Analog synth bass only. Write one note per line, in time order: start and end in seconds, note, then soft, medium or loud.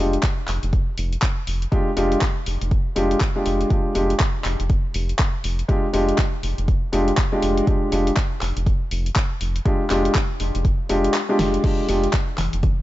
0.00 0.17 F1 loud
0.48 0.59 F1 medium
0.63 0.79 F1 medium
0.98 1.17 F1 loud
1.47 1.66 F1 medium
1.97 2.16 F1 loud
2.47 2.57 F1 medium
2.62 2.77 F1 medium
2.96 3.15 F1 loud
3.46 3.65 F1 loud
3.95 4.14 F1 medium
4.45 4.55 F1 medium
4.60 4.76 F1 medium
4.95 5.13 F1 loud
5.44 5.63 F1 medium
5.94 6.12 F1 medium
6.43 6.54 F1 medium
6.58 6.74 F1 medium
6.93 7.12 F1 loud
7.42 7.61 F1 medium
7.92 8.11 F1 loud
8.42 8.52 F1 medium
8.57 8.72 F1 medium
8.91 9.10 F1 loud
9.41 9.60 F1 medium
9.90 10.09 F1 medium
10.40 10.50 F1 medium
10.55 10.71 F1 medium
10.90 11.08 F1 medium
11.39 11.58 F1 medium
11.89 12.08 F1 loud
12.38 12.49 F1 medium
12.53 12.69 F1 medium